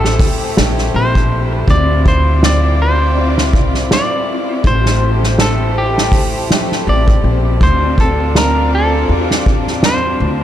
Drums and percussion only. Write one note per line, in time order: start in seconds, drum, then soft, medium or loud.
0.05 snare medium
0.19 kick loud
0.19 open hi-hat medium
0.56 snare loud
0.56 ride medium
0.78 snare soft
0.94 ride medium
1.15 kick medium
1.31 ride medium
1.68 kick loud
1.68 ride medium
1.90 ride soft
2.05 kick medium
2.05 ride medium
2.42 snare loud
2.42 ride medium
2.63 ride soft
2.80 ride medium
3.01 ride soft
3.16 ride medium
3.38 snare medium
3.53 kick loud
3.53 ride medium
3.74 snare soft
3.91 snare loud
3.91 ride medium
4.11 ride soft
4.28 ride medium
4.49 ride soft
4.64 kick loud
4.64 ride medium
4.86 snare medium
5.02 ride medium
5.23 snare soft
5.38 snare loud
5.38 ride medium
5.75 ride medium
5.98 snare medium
6.12 kick loud
6.12 open hi-hat medium
6.49 snare loud
6.49 ride medium
6.72 snare soft
6.87 ride medium
7.08 kick loud
7.24 ride medium
7.61 kick loud
7.61 ride medium
7.83 ride soft
7.98 kick medium
7.98 ride medium
8.35 snare loud
8.35 ride medium
8.56 ride soft
8.71 ride medium
8.93 ride soft
9.08 ride loud
9.31 snare medium
9.46 kick loud
9.46 ride medium
9.67 snare soft
9.83 snare loud
9.83 ride medium
10.04 ride soft
10.19 ride medium